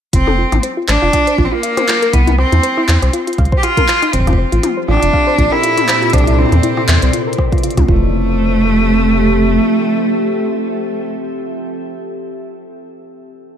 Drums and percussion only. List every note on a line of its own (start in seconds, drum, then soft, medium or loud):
0.13 kick loud
0.13 closed hi-hat medium
0.27 cross-stick medium
0.27 high tom medium
0.52 cross-stick medium
0.52 closed hi-hat soft
0.52 high tom medium
0.63 closed hi-hat medium
0.88 cross-stick medium
0.88 clap loud
1.13 kick medium
1.13 cross-stick medium
1.13 closed hi-hat medium
1.27 closed hi-hat soft
1.38 kick loud
1.63 closed hi-hat medium
1.77 cross-stick medium
1.77 closed hi-hat medium
1.77 high tom medium
1.88 clap loud
2.03 closed hi-hat soft
2.13 kick loud
2.13 cross-stick soft
2.13 closed hi-hat medium
2.27 closed hi-hat soft
2.27 high tom medium
2.39 cross-stick medium
2.52 closed hi-hat soft
2.52 high tom medium
2.63 closed hi-hat medium
2.78 cross-stick soft
2.88 clap loud
3.03 cross-stick medium
3.03 closed hi-hat medium
3.13 closed hi-hat medium
3.27 closed hi-hat soft
3.33 closed hi-hat soft
3.38 kick loud
3.38 cross-stick soft
3.38 closed hi-hat soft
3.45 closed hi-hat soft
3.52 kick loud
3.63 cross-stick medium
3.63 closed hi-hat medium
3.77 kick loud
3.77 closed hi-hat medium
3.77 high tom medium
3.88 clap loud
4.02 cross-stick soft
4.02 closed hi-hat soft
4.13 kick soft
4.13 closed hi-hat medium
4.20 kick medium
4.27 kick medium
4.27 cross-stick medium
4.27 closed hi-hat soft
4.27 high tom medium
4.33 kick medium
4.52 closed hi-hat soft
4.63 cross-stick medium
4.63 closed hi-hat medium
4.63 high tom medium
4.88 cross-stick soft
4.91 cross-stick soft
4.94 cross-stick soft
4.97 cross-stick medium
5.00 cross-stick medium
5.00 closed hi-hat medium
5.13 kick medium
5.38 kick loud
5.38 closed hi-hat soft
5.52 cross-stick medium
5.64 closed hi-hat medium
5.78 closed hi-hat medium
5.78 high tom medium
5.88 cross-stick soft
5.88 clap loud
6.02 closed hi-hat soft
6.10 kick loud
6.10 cross-stick soft
6.10 closed hi-hat soft
6.13 cross-stick soft
6.13 closed hi-hat medium
6.18 cross-stick medium
6.18 closed hi-hat soft
6.24 cross-stick medium
6.24 closed hi-hat soft
6.24 high tom soft
6.30 high tom soft
6.33 high tom soft
6.36 high tom soft
6.38 high tom medium
6.42 high tom medium
6.45 high tom medium
6.49 cross-stick soft
6.49 closed hi-hat soft
6.49 high tom medium
6.52 high tom medium
6.63 closed hi-hat medium
6.77 cross-stick medium
6.88 clap loud
7.02 closed hi-hat medium
7.13 closed hi-hat medium
7.33 closed hi-hat soft
7.38 kick loud
7.38 cross-stick medium
7.52 kick loud
7.52 closed hi-hat soft
7.58 closed hi-hat soft
7.64 closed hi-hat medium
7.71 closed hi-hat soft
7.77 kick loud
7.77 cross-stick soft
7.77 closed hi-hat medium
7.77 high tom medium
7.88 kick loud